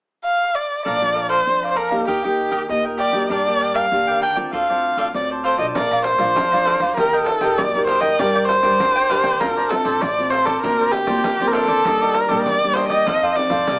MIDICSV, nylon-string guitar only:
0, 0, Header, 1, 2, 480
1, 0, Start_track
1, 0, Key_signature, -2, "major"
1, 0, Tempo, 610998
1, 670, Time_signature, 4, 2, 24, 8
1, 10835, End_track
2, 0, Start_track
2, 0, Title_t, "Nylon-string guitar"
2, 0, Program_c, 0, 24
2, 672, Note_on_c, 0, 46, 44
2, 675, Note_on_c, 0, 53, 45
2, 680, Note_on_c, 0, 62, 50
2, 681, Note_on_c, 0, 57, 37
2, 754, Note_off_c, 0, 53, 0
2, 755, Note_off_c, 0, 57, 0
2, 757, Note_off_c, 0, 62, 0
2, 797, Note_on_c, 0, 53, 48
2, 803, Note_on_c, 0, 57, 48
2, 807, Note_on_c, 0, 62, 48
2, 1117, Note_off_c, 0, 53, 0
2, 1118, Note_off_c, 0, 57, 0
2, 1121, Note_off_c, 0, 62, 0
2, 1129, Note_off_c, 0, 46, 0
2, 1153, Note_on_c, 0, 41, 43
2, 1154, Note_on_c, 0, 53, 47
2, 1158, Note_on_c, 0, 57, 44
2, 1160, Note_on_c, 0, 62, 52
2, 1378, Note_off_c, 0, 53, 0
2, 1380, Note_off_c, 0, 57, 0
2, 1382, Note_off_c, 0, 62, 0
2, 1502, Note_on_c, 0, 58, 54
2, 1503, Note_on_c, 0, 63, 49
2, 1506, Note_on_c, 0, 67, 50
2, 1610, Note_off_c, 0, 41, 0
2, 1629, Note_on_c, 0, 51, 43
2, 1710, Note_off_c, 0, 58, 0
2, 1710, Note_off_c, 0, 63, 0
2, 1712, Note_off_c, 0, 67, 0
2, 1758, Note_on_c, 0, 58, 45
2, 1763, Note_on_c, 0, 63, 56
2, 1767, Note_on_c, 0, 67, 54
2, 2078, Note_off_c, 0, 58, 0
2, 2081, Note_off_c, 0, 63, 0
2, 2083, Note_off_c, 0, 67, 0
2, 2088, Note_off_c, 0, 51, 0
2, 2116, Note_on_c, 0, 46, 48
2, 2116, Note_on_c, 0, 58, 51
2, 2118, Note_on_c, 0, 63, 51
2, 2122, Note_on_c, 0, 67, 53
2, 2340, Note_off_c, 0, 58, 0
2, 2342, Note_off_c, 0, 63, 0
2, 2343, Note_off_c, 0, 67, 0
2, 2462, Note_on_c, 0, 58, 52
2, 2466, Note_on_c, 0, 62, 55
2, 2470, Note_on_c, 0, 67, 49
2, 2573, Note_off_c, 0, 46, 0
2, 2598, Note_on_c, 0, 55, 48
2, 2671, Note_off_c, 0, 58, 0
2, 2672, Note_off_c, 0, 62, 0
2, 2675, Note_off_c, 0, 67, 0
2, 2724, Note_on_c, 0, 58, 53
2, 2727, Note_on_c, 0, 62, 46
2, 2731, Note_on_c, 0, 67, 51
2, 3042, Note_off_c, 0, 58, 0
2, 3043, Note_off_c, 0, 62, 0
2, 3046, Note_off_c, 0, 67, 0
2, 3054, Note_off_c, 0, 55, 0
2, 3079, Note_on_c, 0, 50, 47
2, 3079, Note_on_c, 0, 58, 41
2, 3083, Note_on_c, 0, 62, 47
2, 3085, Note_on_c, 0, 67, 53
2, 3303, Note_off_c, 0, 58, 0
2, 3304, Note_off_c, 0, 62, 0
2, 3306, Note_off_c, 0, 67, 0
2, 3424, Note_on_c, 0, 57, 45
2, 3429, Note_on_c, 0, 60, 53
2, 3432, Note_on_c, 0, 65, 61
2, 3534, Note_off_c, 0, 50, 0
2, 3562, Note_on_c, 0, 50, 43
2, 3632, Note_off_c, 0, 57, 0
2, 3635, Note_off_c, 0, 60, 0
2, 3635, Note_off_c, 0, 65, 0
2, 3689, Note_on_c, 0, 57, 51
2, 3693, Note_on_c, 0, 60, 56
2, 3695, Note_on_c, 0, 65, 53
2, 4005, Note_off_c, 0, 57, 0
2, 4007, Note_off_c, 0, 60, 0
2, 4008, Note_off_c, 0, 65, 0
2, 4016, Note_off_c, 0, 50, 0
2, 4038, Note_on_c, 0, 45, 47
2, 4040, Note_on_c, 0, 57, 50
2, 4043, Note_on_c, 0, 60, 53
2, 4045, Note_on_c, 0, 65, 51
2, 4360, Note_off_c, 0, 57, 0
2, 4361, Note_off_c, 0, 60, 0
2, 4363, Note_off_c, 0, 65, 0
2, 4383, Note_on_c, 0, 57, 47
2, 4386, Note_on_c, 0, 62, 47
2, 4390, Note_on_c, 0, 65, 50
2, 4494, Note_off_c, 0, 45, 0
2, 4527, Note_on_c, 0, 46, 45
2, 4592, Note_off_c, 0, 57, 0
2, 4594, Note_off_c, 0, 62, 0
2, 4595, Note_off_c, 0, 65, 0
2, 4864, Note_on_c, 0, 57, 58
2, 4868, Note_on_c, 0, 62, 49
2, 4872, Note_on_c, 0, 65, 65
2, 4978, Note_off_c, 0, 46, 0
2, 5000, Note_on_c, 0, 53, 47
2, 5073, Note_off_c, 0, 57, 0
2, 5074, Note_off_c, 0, 62, 0
2, 5077, Note_off_c, 0, 65, 0
2, 5127, Note_on_c, 0, 57, 52
2, 5131, Note_on_c, 0, 62, 53
2, 5135, Note_on_c, 0, 65, 58
2, 5444, Note_off_c, 0, 57, 0
2, 5446, Note_off_c, 0, 62, 0
2, 5448, Note_off_c, 0, 65, 0
2, 5455, Note_off_c, 0, 53, 0
2, 5481, Note_on_c, 0, 51, 50
2, 5485, Note_on_c, 0, 63, 46
2, 5486, Note_on_c, 0, 67, 43
2, 5491, Note_on_c, 0, 70, 53
2, 5801, Note_off_c, 0, 63, 0
2, 5803, Note_off_c, 0, 67, 0
2, 5805, Note_off_c, 0, 70, 0
2, 5828, Note_on_c, 0, 63, 52
2, 5831, Note_on_c, 0, 67, 54
2, 5836, Note_on_c, 0, 70, 55
2, 5935, Note_off_c, 0, 51, 0
2, 5956, Note_on_c, 0, 46, 52
2, 6034, Note_off_c, 0, 63, 0
2, 6036, Note_off_c, 0, 67, 0
2, 6037, Note_off_c, 0, 70, 0
2, 6087, Note_on_c, 0, 63, 53
2, 6091, Note_on_c, 0, 67, 51
2, 6094, Note_on_c, 0, 70, 52
2, 6403, Note_off_c, 0, 63, 0
2, 6405, Note_off_c, 0, 67, 0
2, 6407, Note_off_c, 0, 70, 0
2, 6412, Note_off_c, 0, 46, 0
2, 6439, Note_on_c, 0, 55, 49
2, 6441, Note_on_c, 0, 62, 47
2, 6445, Note_on_c, 0, 67, 49
2, 6446, Note_on_c, 0, 70, 60
2, 6760, Note_off_c, 0, 62, 0
2, 6761, Note_off_c, 0, 67, 0
2, 6763, Note_off_c, 0, 70, 0
2, 6784, Note_on_c, 0, 62, 57
2, 6787, Note_on_c, 0, 67, 50
2, 6789, Note_on_c, 0, 70, 57
2, 6894, Note_off_c, 0, 55, 0
2, 6920, Note_on_c, 0, 50, 49
2, 7112, Note_off_c, 0, 62, 0
2, 7112, Note_off_c, 0, 67, 0
2, 7114, Note_off_c, 0, 70, 0
2, 7152, Note_on_c, 0, 62, 59
2, 7157, Note_on_c, 0, 67, 63
2, 7161, Note_on_c, 0, 70, 61
2, 7355, Note_off_c, 0, 62, 0
2, 7358, Note_off_c, 0, 67, 0
2, 7359, Note_off_c, 0, 70, 0
2, 7373, Note_off_c, 0, 50, 0
2, 7400, Note_on_c, 0, 50, 50
2, 7400, Note_on_c, 0, 57, 49
2, 7402, Note_on_c, 0, 60, 48
2, 7407, Note_on_c, 0, 65, 51
2, 7538, Note_off_c, 0, 57, 0
2, 7540, Note_off_c, 0, 60, 0
2, 7542, Note_off_c, 0, 65, 0
2, 7630, Note_on_c, 0, 57, 55
2, 7633, Note_on_c, 0, 60, 44
2, 7637, Note_on_c, 0, 65, 56
2, 7853, Note_off_c, 0, 50, 0
2, 7857, Note_off_c, 0, 57, 0
2, 7859, Note_off_c, 0, 60, 0
2, 7860, Note_off_c, 0, 65, 0
2, 7877, Note_on_c, 0, 45, 53
2, 8000, Note_on_c, 0, 57, 48
2, 8005, Note_on_c, 0, 60, 47
2, 8007, Note_on_c, 0, 65, 52
2, 8319, Note_off_c, 0, 57, 0
2, 8320, Note_off_c, 0, 60, 0
2, 8322, Note_off_c, 0, 65, 0
2, 8331, Note_off_c, 0, 45, 0
2, 8356, Note_on_c, 0, 50, 47
2, 8358, Note_on_c, 0, 58, 45
2, 8361, Note_on_c, 0, 60, 46
2, 8364, Note_on_c, 0, 65, 53
2, 8676, Note_off_c, 0, 58, 0
2, 8679, Note_off_c, 0, 60, 0
2, 8679, Note_off_c, 0, 65, 0
2, 8699, Note_on_c, 0, 58, 57
2, 8702, Note_on_c, 0, 60, 58
2, 8707, Note_on_c, 0, 65, 64
2, 8810, Note_off_c, 0, 50, 0
2, 8839, Note_on_c, 0, 50, 47
2, 8907, Note_off_c, 0, 58, 0
2, 8909, Note_off_c, 0, 60, 0
2, 8910, Note_off_c, 0, 65, 0
2, 8959, Note_on_c, 0, 58, 56
2, 8964, Note_on_c, 0, 60, 65
2, 8968, Note_on_c, 0, 65, 66
2, 9277, Note_off_c, 0, 58, 0
2, 9279, Note_off_c, 0, 60, 0
2, 9281, Note_off_c, 0, 65, 0
2, 9291, Note_off_c, 0, 50, 0
2, 9310, Note_on_c, 0, 51, 52
2, 9314, Note_on_c, 0, 55, 51
2, 9318, Note_on_c, 0, 58, 47
2, 9320, Note_on_c, 0, 62, 50
2, 9633, Note_off_c, 0, 55, 0
2, 9634, Note_off_c, 0, 58, 0
2, 9637, Note_off_c, 0, 62, 0
2, 9659, Note_on_c, 0, 55, 54
2, 9665, Note_on_c, 0, 58, 57
2, 9668, Note_on_c, 0, 62, 69
2, 9766, Note_off_c, 0, 51, 0
2, 9793, Note_on_c, 0, 46, 50
2, 9866, Note_off_c, 0, 55, 0
2, 9869, Note_off_c, 0, 58, 0
2, 9871, Note_off_c, 0, 62, 0
2, 9920, Note_on_c, 0, 55, 45
2, 9923, Note_on_c, 0, 58, 46
2, 9928, Note_on_c, 0, 62, 49
2, 10236, Note_off_c, 0, 55, 0
2, 10238, Note_off_c, 0, 58, 0
2, 10239, Note_off_c, 0, 62, 0
2, 10247, Note_off_c, 0, 46, 0
2, 10274, Note_on_c, 0, 53, 50
2, 10277, Note_on_c, 0, 60, 44
2, 10279, Note_on_c, 0, 63, 44
2, 10284, Note_on_c, 0, 69, 49
2, 10473, Note_off_c, 0, 60, 0
2, 10476, Note_off_c, 0, 63, 0
2, 10478, Note_off_c, 0, 69, 0
2, 10509, Note_on_c, 0, 60, 50
2, 10510, Note_on_c, 0, 63, 47
2, 10517, Note_on_c, 0, 69, 46
2, 10727, Note_off_c, 0, 53, 0
2, 10733, Note_off_c, 0, 60, 0
2, 10735, Note_off_c, 0, 63, 0
2, 10736, Note_off_c, 0, 69, 0
2, 10753, Note_on_c, 0, 48, 52
2, 10835, Note_off_c, 0, 48, 0
2, 10835, End_track
0, 0, End_of_file